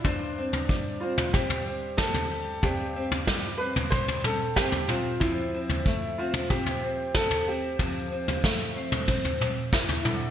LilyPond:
<<
  \new Staff \with { instrumentName = "Upright piano" } { \time 4/4 \key f \lydian \tempo 4 = 93 d'4. f'8 g'4 a'4 | g'4. b'8 c''8 a'8 g'8 f'8 | e'4. f'8 g'4 a'8 g'8~ | g'2. r4 | }
  \new Staff \with { instrumentName = "Steel-string acoustic guitar" } { \time 4/4 \key f \lydian << { c''8 c'4 c'8 c'8 c'8 g'8 g'8 | c'8 c'4 c'8 g'8 c'8 c'8 c'8 | c'8 c'4 c'8 c'8 c'8 g'8 c'8 | c'8 c'4 c'8 c'8 c'4. | } \\ { g,4 g2. | g,4 g2. | f4 a2. | f4 a2 e8 d8 | } >> }
  \new DrumStaff \with { instrumentName = "Drums" } \drummode { \time 4/4 <bd tomfh>8. tomfh16 bd8. <tomfh toml>16 <bd toml>16 tomfh8. <bd sn>16 tomfh8. | <bd tomfh>8. tomfh16 <bd sn>8. <tomfh toml>16 <bd toml>16 tomfh16 toml8 <bd sn>16 tomfh16 toml8 | <bd tomfh>8. tomfh16 bd8. <tomfh toml>16 <bd toml>16 tomfh8. <bd sn>16 tomfh8. | <bd tomfh>8. tomfh16 <bd sn>8. <tomfh toml>16 <bd toml>16 tomfh16 toml8 <bd sn>16 tomfh16 toml8 | }
>>